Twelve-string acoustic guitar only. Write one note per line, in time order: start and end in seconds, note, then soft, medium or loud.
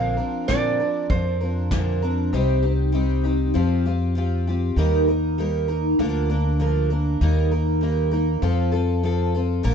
0.00 0.18 A#2 medium
0.00 0.18 D3 medium
0.00 0.19 F3 medium
0.00 0.18 C4 medium
0.00 0.17 D4 medium
0.00 0.16 A#4 medium
0.17 0.47 F3 soft
0.17 0.48 C4 soft
0.17 0.48 D4 soft
0.17 0.48 A#4 medium
0.48 0.79 A#2 medium
0.48 0.79 D3 medium
0.48 0.80 F3 medium
0.48 0.80 C4 medium
0.48 0.80 D4 medium
0.48 0.78 A#4 medium
0.80 1.09 F3 soft
0.80 1.09 C4 soft
0.80 1.11 D4 soft
0.80 1.11 A#4 soft
1.10 1.41 F3 soft
1.10 1.41 C4 medium
1.10 1.40 D4 medium
1.10 1.39 A#4 medium
1.41 1.72 F3 soft
1.41 1.72 C4 soft
1.41 1.72 D4 soft
1.41 1.72 A#4 medium
1.72 2.03 A#2 medium
1.72 2.03 D3 medium
1.72 2.03 F3 medium
1.72 2.03 C4 medium
1.72 2.02 D4 medium
1.72 2.01 A#4 medium
2.02 2.33 F3 soft
2.02 2.33 C4 medium
2.02 2.34 D4 medium
2.02 2.33 A#4 medium
2.33 2.64 C3 medium
2.33 2.64 G3 medium
2.33 2.64 C4 medium
2.33 2.63 D#4 medium
2.33 2.61 G4 medium
2.63 2.92 C4 soft
2.63 2.94 D#4 soft
2.63 2.94 G4 medium
2.92 3.24 G3 medium
2.92 3.25 C4 medium
2.92 3.24 D#4 medium
2.92 3.22 G4 medium
3.24 3.54 C4 medium
3.24 3.55 D#4 medium
3.24 3.55 G4 medium
3.54 3.85 F3 medium
3.54 3.86 C4 medium
3.54 3.85 F4 medium
3.54 3.84 G4 medium
3.86 4.15 C4 medium
3.86 4.16 F4 medium
3.86 4.16 G4 medium
4.15 4.46 F3 medium
4.15 4.47 C4 medium
4.15 4.48 F4 medium
4.15 4.46 G4 medium
4.47 4.78 C4 medium
4.47 4.78 F4 medium
4.47 4.78 G4 medium
4.77 5.08 D#3 medium
4.77 5.08 G3 medium
4.77 5.08 A#3 medium
4.77 5.08 D#4 loud
4.77 5.07 A#4 loud
5.08 5.38 A#3 soft
5.08 5.38 D#4 medium
5.08 5.38 A#4 medium
5.38 5.69 G3 medium
5.38 5.69 A#3 medium
5.38 5.68 D#4 medium
5.38 5.67 A#4 medium
5.68 5.99 A#3 medium
5.68 6.00 D#4 medium
5.68 5.99 A#4 medium
5.99 6.30 D3 medium
5.99 6.30 F3 medium
5.99 6.30 A#3 medium
5.99 6.30 D4 medium
5.99 6.28 A#4 medium
6.30 6.59 A#3 medium
6.30 6.60 D4 medium
6.30 6.60 A#4 medium
6.59 6.90 F3 medium
6.59 6.91 A#3 medium
6.59 6.90 D4 medium
6.59 6.89 A#4 medium
6.90 7.21 A#3 soft
6.90 7.21 D4 medium
6.90 7.21 A#4 medium
7.21 7.52 D#3 medium
7.21 7.52 G3 medium
7.21 7.52 A#3 medium
7.21 7.51 D#4 medium
7.21 7.50 A#4 medium
7.51 7.81 A#3 soft
7.51 7.82 D#4 medium
7.51 7.82 A#4 medium
7.81 8.12 G3 medium
7.81 8.13 A#3 medium
7.81 8.12 D#4 medium
7.81 8.10 A#4 medium
8.11 8.43 A#3 medium
8.11 8.43 D#4 medium
8.11 8.42 A#4 medium
8.42 8.73 F3 medium
8.42 8.73 C4 medium
8.42 8.72 F4 loud
8.42 8.71 A4 medium
8.72 9.02 C4 medium
8.72 9.03 F4 medium
8.72 9.03 A4 medium
9.03 9.34 F3 medium
9.03 9.34 C4 medium
9.03 9.34 F4 medium
9.03 9.33 A4 medium
9.34 9.64 C4 medium
9.34 9.64 F4 medium
9.34 9.64 A4 medium
9.63 9.74 A#2 medium
9.63 9.74 D3 medium
9.63 9.74 F3 medium
9.63 9.74 A#3 loud
9.63 9.74 D4 loud
9.63 9.74 A#4 loud